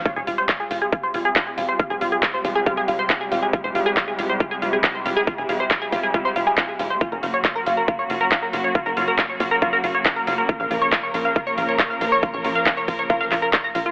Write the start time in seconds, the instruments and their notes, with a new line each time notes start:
0.05 string section C3 G3 G#3 F4 G4, synth arpeggio sound F4, kick, closed hi-hat
0.16 analog synth bass F1, synth arpeggio sound G#4, closed hi-hat
0.27 analog synth bass F1, synth arpeggio sound F4, open hi-hat
0.38 synth arpeggio sound C5, closed hi-hat
0.49 synth arpeggio sound F4, kick, clap, closed hi-hat
0.60 synth arpeggio sound G#4, closed hi-hat
0.71 analog synth bass F1, synth arpeggio sound F4, open hi-hat
0.82 synth arpeggio sound G#4
0.92 synth arpeggio sound F4, kick, closed hi-hat
1.03 synth arpeggio sound C5, closed hi-hat
1.14 analog synth bass F1, synth arpeggio sound F4, open hi-hat
1.25 synth arpeggio sound G#4, closed hi-hat
1.36 synth arpeggio sound F4, kick, clap, closed hi-hat
1.47 synth arpeggio sound G#4, closed hi-hat
1.58 analog synth bass F1, synth arpeggio sound F4, open hi-hat
1.69 synth arpeggio sound C5, closed hi-hat
1.79 synth arpeggio sound F4, kick, closed hi-hat
1.90 analog synth bass F1, synth arpeggio sound G#4, closed hi-hat
2.01 analog synth bass F1, synth arpeggio sound F4, open hi-hat
2.12 synth arpeggio sound G#4, closed hi-hat
2.23 synth arpeggio sound F4, kick, clap, closed hi-hat
2.34 synth arpeggio sound C5, closed hi-hat
2.45 analog synth bass F1, synth arpeggio sound F4, kick, open hi-hat
2.55 synth arpeggio sound G#4
2.66 synth arpeggio sound F4, kick, closed hi-hat
2.77 synth arpeggio sound G#4, closed hi-hat
2.88 analog synth bass F1, synth arpeggio sound F4, open hi-hat
2.99 synth arpeggio sound C5, closed hi-hat
3.10 synth arpeggio sound F4, kick, clap, closed hi-hat
3.21 synth arpeggio sound G#4, closed hi-hat
3.31 analog synth bass F1, synth arpeggio sound F4, open hi-hat
3.42 synth arpeggio sound G#4, closed hi-hat
3.53 string section E4, synth arpeggio sound F4, kick, closed hi-hat
3.64 analog synth bass F1, synth arpeggio sound C5, closed hi-hat
3.75 analog synth bass F1, synth arpeggio sound F4, open hi-hat
3.86 synth arpeggio sound G#4, closed hi-hat
3.97 synth arpeggio sound F4, kick, clap, closed hi-hat
4.08 synth arpeggio sound G#4, closed hi-hat
4.19 analog synth bass F1, synth arpeggio sound F4, open hi-hat
4.29 synth arpeggio sound C5, closed hi-hat
4.40 synth arpeggio sound F4, kick, closed hi-hat
4.51 synth arpeggio sound G#4, closed hi-hat
4.62 analog synth bass F1, synth arpeggio sound F4, open hi-hat
4.73 synth arpeggio sound G#4, closed hi-hat
4.84 synth arpeggio sound F4, kick, clap, closed hi-hat
4.95 synth arpeggio sound C5, closed hi-hat
5.06 analog synth bass F1, synth arpeggio sound F4, open hi-hat
5.17 synth arpeggio sound G#4, closed hi-hat
5.27 synth arpeggio sound F4, kick, closed hi-hat
5.38 analog synth bass F1, synth arpeggio sound G#4, closed hi-hat
5.49 analog synth bass F1, synth arpeggio sound F4, open hi-hat
5.60 synth arpeggio sound C5
5.71 synth arpeggio sound F4, kick, clap, closed hi-hat
5.82 synth arpeggio sound G#4, closed hi-hat
5.92 analog synth bass F1, synth arpeggio sound F4, kick, open hi-hat
6.03 synth arpeggio sound G#4, closed hi-hat
6.14 synth arpeggio sound F4, kick, closed hi-hat
6.25 synth arpeggio sound C5, closed hi-hat
6.36 analog synth bass F1, synth arpeggio sound F4, open hi-hat
6.47 synth arpeggio sound G#4, closed hi-hat
6.58 synth arpeggio sound F4, kick, clap, closed hi-hat
6.68 synth arpeggio sound G#4, closed hi-hat
6.79 analog synth bass F1, synth arpeggio sound F4, open hi-hat
6.90 synth arpeggio sound C5, closed hi-hat
7.01 string section C#3 F#3 A#3 F#4, synth arpeggio sound F4, kick, closed hi-hat
7.12 analog synth bass F#1, synth arpeggio sound A#4, closed hi-hat
7.23 analog synth bass F#1, synth arpeggio sound F4, open hi-hat
7.34 synth arpeggio sound C#5, closed hi-hat
7.45 synth arpeggio sound F4, kick, clap, closed hi-hat
7.55 synth arpeggio sound A#4, closed hi-hat
7.66 analog synth bass F#1, synth arpeggio sound F4, open hi-hat
7.77 synth arpeggio sound A#4, closed hi-hat
7.88 synth arpeggio sound F4, kick, closed hi-hat
7.99 synth arpeggio sound C#5, closed hi-hat
8.10 analog synth bass F#1, synth arpeggio sound F4, open hi-hat
8.21 synth arpeggio sound A#4, closed hi-hat
8.32 synth arpeggio sound F4, kick, clap, closed hi-hat
8.42 synth arpeggio sound A#4, closed hi-hat
8.53 analog synth bass F#1, synth arpeggio sound F4, open hi-hat
8.64 synth arpeggio sound C#5
8.75 synth arpeggio sound F4, kick, closed hi-hat
8.86 analog synth bass F#1, synth arpeggio sound A#4, closed hi-hat
8.97 analog synth bass F#1, synth arpeggio sound F4, open hi-hat
9.08 synth arpeggio sound A#4, closed hi-hat
9.19 synth arpeggio sound F4, kick, clap, closed hi-hat
9.29 synth arpeggio sound C#5, closed hi-hat
9.40 analog synth bass F#1, synth arpeggio sound F4, kick, open hi-hat
9.51 synth arpeggio sound A#4
9.62 synth arpeggio sound F4, kick, closed hi-hat
9.73 synth arpeggio sound A#4, closed hi-hat
9.84 analog synth bass F#1, synth arpeggio sound F4, open hi-hat
9.95 synth arpeggio sound C#5, closed hi-hat
10.05 synth arpeggio sound F4, kick, clap, closed hi-hat
10.16 synth arpeggio sound A#4, closed hi-hat
10.27 analog synth bass F#1, synth arpeggio sound F4, open hi-hat
10.38 synth arpeggio sound A#4
10.49 string section F3 A#4, synth arpeggio sound F4, kick, closed hi-hat
10.60 analog synth bass A#1, synth arpeggio sound F5, closed hi-hat
10.71 analog synth bass A#1, synth arpeggio sound F4, open hi-hat
10.82 synth arpeggio sound C#5, closed hi-hat
10.92 synth arpeggio sound F4, kick, clap, closed hi-hat
11.03 synth arpeggio sound C#5, closed hi-hat
11.14 analog synth bass A#1, synth arpeggio sound F4, open hi-hat
11.25 synth arpeggio sound F5, closed hi-hat
11.36 synth arpeggio sound F4, kick, closed hi-hat
11.47 synth arpeggio sound C#5, closed hi-hat
11.58 analog synth bass A#1, synth arpeggio sound F4, open hi-hat
11.68 synth arpeggio sound C#5, closed hi-hat
11.79 synth arpeggio sound F4, kick, clap, closed hi-hat
11.90 synth arpeggio sound F5, closed hi-hat
12.01 analog synth bass A#1, synth arpeggio sound F4, open hi-hat
12.12 synth arpeggio sound C#5, closed hi-hat
12.23 synth arpeggio sound F4, kick, closed hi-hat
12.34 analog synth bass A#1, synth arpeggio sound C#5, closed hi-hat
12.44 analog synth bass A#1, synth arpeggio sound F4, open hi-hat
12.55 synth arpeggio sound F5, closed hi-hat
12.66 synth arpeggio sound F4, kick, clap, closed hi-hat
12.77 synth arpeggio sound C#5, closed hi-hat
12.88 analog synth bass A#1, synth arpeggio sound F4, kick, open hi-hat
12.99 synth arpeggio sound C#5, closed hi-hat
13.10 synth arpeggio sound F4, kick, closed hi-hat
13.21 synth arpeggio sound F5, closed hi-hat
13.31 analog synth bass A#1, synth arpeggio sound F4, clap, open hi-hat
13.42 synth arpeggio sound A#4
13.53 synth arpeggio sound A#4, kick, clap, closed hi-hat
13.64 synth arpeggio sound A#5, closed hi-hat
13.75 analog synth bass A#1, synth arpeggio sound F4, open hi-hat
13.86 synth arpeggio sound F4, closed hi-hat